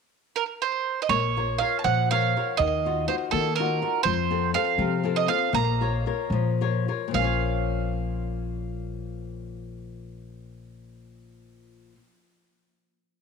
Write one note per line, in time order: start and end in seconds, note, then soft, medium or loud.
0.36 0.43 A#4 medium
0.62 1.02 C5 medium
1.02 1.09 D#5 medium
1.09 1.58 A#1 medium
1.09 1.59 A#3 medium
1.09 1.62 C#5 medium
1.37 1.59 F4 soft
1.37 1.59 A#4 soft
1.37 1.60 C#5 soft
1.58 2.01 F4 soft
1.58 2.01 A#4 soft
1.58 2.02 C#5 soft
1.58 1.76 F5 medium
1.79 1.84 A5 soft
1.84 2.33 A#2 medium
1.84 2.34 F3 medium
1.84 2.09 F#5 medium
2.11 2.35 F4 soft
2.11 2.36 A#4 soft
2.11 2.36 C#5 soft
2.11 2.60 F5 medium
2.36 2.55 F4 soft
2.36 2.55 A#4 soft
2.36 2.55 C#5 soft
2.57 3.07 D#2 medium
2.57 3.07 D#3 medium
2.57 3.04 D#5 medium
2.85 3.07 D#4 soft
2.85 3.07 F4 soft
2.85 3.08 F#4 soft
3.08 3.48 D#4 soft
3.08 3.48 F4 soft
3.08 3.48 F#4 soft
3.08 3.14 C5 medium
3.31 3.80 D#3 medium
3.31 3.80 A#3 soft
3.31 3.55 A4 medium
3.56 3.81 D#4 soft
3.56 4.03 A#4 medium
3.60 3.81 F4 soft
3.60 3.81 F#4 soft
3.82 4.01 D#4 soft
3.82 4.01 F4 soft
3.82 4.01 F#4 soft
4.03 4.53 F2 medium
4.03 4.53 F3 medium
4.03 4.50 C5 medium
4.31 4.53 C4 soft
4.31 4.54 F4 soft
4.31 4.54 A4 soft
4.54 4.95 C4 soft
4.54 4.95 F4 soft
4.54 4.95 A4 soft
4.54 5.18 F5 medium
4.78 5.27 C3 medium
4.78 5.27 F3 medium
5.04 5.28 C4 soft
5.04 5.28 F4 soft
5.04 5.28 A4 soft
5.16 5.28 D#5 medium
5.28 5.48 C4 soft
5.28 5.48 F4 soft
5.28 5.49 A4 soft
5.28 5.54 F5 medium
5.53 6.04 A#1 medium
5.53 6.04 A#3 medium
5.53 6.57 A#5 medium
5.81 6.05 F4 soft
5.81 6.06 A#4 soft
5.81 6.06 C#5 soft
6.06 6.50 F4 soft
6.06 6.50 A#4 soft
6.06 6.50 C#5 soft
6.30 6.85 A#2 medium
6.30 6.86 F3 medium
6.61 6.87 F4 soft
6.61 6.87 A#4 soft
6.61 6.88 C#5 soft
6.88 7.10 F4 soft
6.88 7.10 A#4 soft
6.88 7.10 C#5 soft
7.08 11.92 A#2 soft
7.08 11.94 F3 soft
7.14 11.95 A#1 medium
7.14 11.95 A#3 soft
7.14 11.97 C#4 soft
7.14 11.95 F5 medium
7.21 11.99 F4 soft
7.21 12.00 C#5 soft